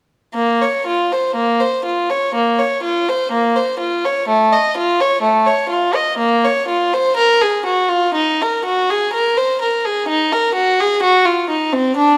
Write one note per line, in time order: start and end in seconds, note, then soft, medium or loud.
0.34 0.61 A#3 medium
0.62 0.87 C#5 soft
0.87 1.11 F4 soft
1.12 1.37 C5 soft
1.35 1.60 A#3 medium
1.60 1.85 C5 soft
1.85 2.09 F4 soft
2.10 2.34 C#5 soft
2.35 2.58 A#3 soft
2.59 2.83 C#5 soft
2.83 3.06 F4 soft
3.09 3.32 C5 medium
3.31 3.55 A#3 medium
3.56 3.80 C5 soft
3.80 4.03 F4 soft
4.05 4.28 C#5 soft
4.28 4.51 A3 medium
4.53 4.76 D#5 soft
4.78 5.00 F4 soft
5.01 5.24 C#5 medium
5.22 5.46 A3 soft
5.46 5.71 C#5 medium
5.69 5.94 F4 soft
5.95 6.19 D#5 soft
6.18 6.43 A#3 medium
6.44 6.68 C#5 medium
6.68 6.92 F4 soft
6.94 7.17 C5 medium
7.17 7.41 A#4 medium
7.41 7.66 G#4 medium
7.66 7.90 F#4 soft
7.89 8.15 F4 medium
8.15 8.40 D#4 medium
8.41 8.66 A#4 medium
8.65 8.89 F#4 medium
8.90 9.14 G#4 medium
9.13 9.37 A#4 medium
9.37 9.61 C5 medium
9.62 9.85 A#4 soft
9.85 10.09 G#4 soft
10.09 10.32 D#4 medium
10.33 10.56 A#4 medium
10.55 10.79 F#4 medium
10.81 11.04 G#4 medium
11.02 11.26 F#4 medium
11.25 11.50 F4 medium
11.50 11.73 D#4 soft
11.72 11.97 C4 medium
11.96 12.17 D4 medium